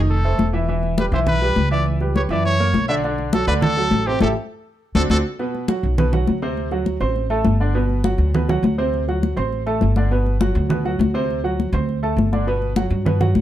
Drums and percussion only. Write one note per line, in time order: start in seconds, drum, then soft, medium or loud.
0.09 high conga soft
0.24 high conga soft
0.39 high conga medium
0.68 high conga soft
0.83 high conga soft
0.98 high conga loud
1.12 high conga soft
1.27 high conga soft
1.27 low conga medium
1.41 high conga soft
1.56 high conga medium
1.71 high conga soft
1.86 high conga soft
2.01 high conga soft
2.16 high conga medium
2.30 high conga soft
2.46 high conga soft
2.60 high conga soft
2.74 high conga medium
3.04 high conga soft
3.18 high conga soft
3.33 high conga loud
3.48 high conga soft
3.62 high conga soft
3.62 low conga medium
3.77 high conga soft
3.91 high conga medium
4.07 high conga soft
4.21 high conga loud
4.95 high conga loud
5.10 high conga loud
5.39 high conga soft
5.55 high conga soft
5.68 high conga loud
5.84 high conga soft
5.98 high conga soft
5.98 low conga medium
6.13 high conga soft
6.13 low conga medium
6.27 high conga medium
6.42 high conga soft
6.57 high conga soft
6.71 high conga soft
6.86 high conga medium
7.01 high conga soft
7.16 high conga soft
7.30 high conga soft
7.45 high conga medium
7.74 high conga soft
7.90 high conga soft
8.04 high conga loud
8.19 high conga soft
8.35 high conga soft
8.35 low conga medium
8.49 high conga soft
8.49 low conga medium
8.64 high conga medium
8.79 high conga soft
8.94 high conga soft
9.09 high conga soft
9.23 high conga medium
9.38 high conga soft
9.53 high conga soft
9.67 high conga soft
9.81 high conga medium
9.96 high conga medium
10.11 high conga soft
10.26 high conga soft
10.41 high conga loud
10.56 high conga soft
10.70 high conga soft
10.70 low conga medium
10.86 high conga soft
11.01 high conga medium
11.15 high conga soft
11.30 high conga soft
11.46 high conga soft
11.60 high conga medium
11.74 high conga soft
11.89 high conga soft
12.03 high conga soft
12.18 high conga medium
12.33 high conga medium
12.48 high conga soft
12.62 high conga soft
12.76 high conga loud
12.91 high conga soft
13.06 high conga soft
13.06 low conga medium
13.21 high conga soft
13.21 low conga medium
13.35 high conga medium